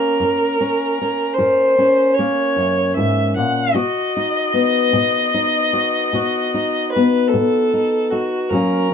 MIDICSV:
0, 0, Header, 1, 3, 480
1, 0, Start_track
1, 0, Tempo, 793651
1, 2272, Time_signature, 12, 3, 24, 8
1, 5406, End_track
2, 0, Start_track
2, 0, Title_t, "Fiddle"
2, 0, Program_c, 0, 110
2, 0, Note_on_c, 0, 70, 96
2, 808, Note_on_c, 0, 72, 93
2, 817, Note_off_c, 0, 70, 0
2, 1297, Note_on_c, 0, 73, 89
2, 1306, Note_off_c, 0, 72, 0
2, 1780, Note_on_c, 0, 76, 87
2, 1789, Note_off_c, 0, 73, 0
2, 2026, Note_off_c, 0, 76, 0
2, 2033, Note_on_c, 0, 78, 91
2, 2256, Note_on_c, 0, 75, 99
2, 2265, Note_off_c, 0, 78, 0
2, 4181, Note_off_c, 0, 75, 0
2, 4184, Note_on_c, 0, 71, 81
2, 4404, Note_on_c, 0, 69, 86
2, 4414, Note_off_c, 0, 71, 0
2, 4901, Note_on_c, 0, 66, 84
2, 4910, Note_off_c, 0, 69, 0
2, 5138, Note_on_c, 0, 70, 89
2, 5147, Note_off_c, 0, 66, 0
2, 5406, Note_off_c, 0, 70, 0
2, 5406, End_track
3, 0, Start_track
3, 0, Title_t, "Steel-string acoustic guitar"
3, 0, Program_c, 1, 25
3, 0, Note_on_c, 1, 58, 53
3, 0, Note_on_c, 1, 61, 57
3, 120, Note_on_c, 1, 42, 72
3, 358, Note_off_c, 1, 61, 0
3, 367, Note_on_c, 1, 61, 56
3, 548, Note_off_c, 1, 42, 0
3, 599, Note_off_c, 1, 61, 0
3, 614, Note_on_c, 1, 61, 53
3, 835, Note_on_c, 1, 42, 66
3, 839, Note_on_c, 1, 70, 62
3, 1072, Note_off_c, 1, 61, 0
3, 1079, Note_on_c, 1, 61, 60
3, 1266, Note_off_c, 1, 42, 0
3, 1315, Note_off_c, 1, 58, 0
3, 1324, Note_on_c, 1, 58, 55
3, 1549, Note_on_c, 1, 42, 57
3, 1791, Note_off_c, 1, 42, 0
3, 1796, Note_on_c, 1, 44, 60
3, 2034, Note_off_c, 1, 44, 0
3, 2037, Note_on_c, 1, 46, 58
3, 2247, Note_off_c, 1, 70, 0
3, 2249, Note_off_c, 1, 58, 0
3, 2264, Note_on_c, 1, 47, 70
3, 2267, Note_on_c, 1, 66, 64
3, 2274, Note_off_c, 1, 46, 0
3, 2276, Note_off_c, 1, 61, 0
3, 2519, Note_on_c, 1, 63, 57
3, 2700, Note_off_c, 1, 47, 0
3, 2743, Note_on_c, 1, 59, 55
3, 2982, Note_on_c, 1, 47, 69
3, 3224, Note_off_c, 1, 63, 0
3, 3232, Note_on_c, 1, 63, 53
3, 3420, Note_off_c, 1, 47, 0
3, 3464, Note_off_c, 1, 66, 0
3, 3466, Note_on_c, 1, 66, 61
3, 3708, Note_on_c, 1, 47, 67
3, 3713, Note_off_c, 1, 66, 0
3, 3716, Note_on_c, 1, 66, 64
3, 3950, Note_off_c, 1, 63, 0
3, 3957, Note_on_c, 1, 63, 59
3, 4142, Note_off_c, 1, 47, 0
3, 4188, Note_off_c, 1, 59, 0
3, 4211, Note_on_c, 1, 59, 58
3, 4437, Note_on_c, 1, 47, 70
3, 4671, Note_off_c, 1, 63, 0
3, 4678, Note_on_c, 1, 63, 52
3, 4867, Note_off_c, 1, 47, 0
3, 4905, Note_off_c, 1, 63, 0
3, 4912, Note_on_c, 1, 63, 53
3, 5123, Note_off_c, 1, 63, 0
3, 5133, Note_off_c, 1, 59, 0
3, 5145, Note_on_c, 1, 42, 71
3, 5153, Note_on_c, 1, 54, 58
3, 5157, Note_on_c, 1, 58, 56
3, 5165, Note_on_c, 1, 61, 57
3, 5392, Note_off_c, 1, 61, 0
3, 5406, Note_off_c, 1, 42, 0
3, 5406, Note_off_c, 1, 54, 0
3, 5406, Note_off_c, 1, 58, 0
3, 5406, Note_off_c, 1, 66, 0
3, 5406, End_track
0, 0, End_of_file